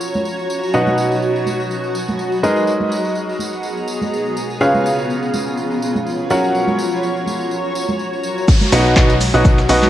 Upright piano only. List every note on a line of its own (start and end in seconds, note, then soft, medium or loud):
0.00 0.71 F#3 medium
0.00 0.71 C#4 medium
0.00 0.71 F#4 medium
0.00 0.71 A#4 medium
0.00 0.71 C#5 medium
0.00 0.71 F#5 medium
0.74 2.41 B2 medium
0.74 2.41 D#4 medium
0.74 2.41 F#4 medium
0.74 2.41 B4 medium
0.74 2.41 D#5 medium
0.74 2.41 F#5 medium
2.43 4.58 G#3 medium
2.43 4.58 D#4 medium
2.43 4.58 G#4 medium
2.43 4.58 A#4 medium
2.43 4.58 B4 medium
2.43 4.58 D#5 medium
4.61 6.28 C#3 medium
4.61 6.28 F4 medium
4.61 6.28 G#4 medium
4.61 6.28 B4 medium
4.61 6.28 C#5 medium
4.61 6.28 F5 medium
6.30 8.45 F#3 medium
6.30 8.45 C#4 medium
6.30 8.45 F#4 medium
6.30 8.46 A#4 medium
6.30 8.46 C#5 medium
6.30 8.45 F#5 medium
8.72 8.94 B2 loud
8.72 8.94 D#4 medium
8.72 8.94 F#4 medium
8.72 8.94 B4 medium
8.72 8.94 D#5 medium
8.72 8.94 F#5 loud
8.96 9.12 B2 medium
8.96 9.12 D#4 medium
8.96 9.12 F#4 medium
8.96 9.12 B4 medium
8.96 9.12 D#5 medium
8.96 9.12 F#5 loud
9.34 9.57 B2 medium
9.34 9.57 D#4 medium
9.34 9.57 F#4 medium
9.34 9.57 B4 medium
9.34 9.57 D#5 medium
9.34 9.57 F#5 medium
9.69 9.90 B2 medium
9.69 9.90 D#4 medium
9.69 9.90 F#4 medium
9.69 9.90 B4 medium
9.69 9.90 D#5 medium
9.69 9.90 F#5 loud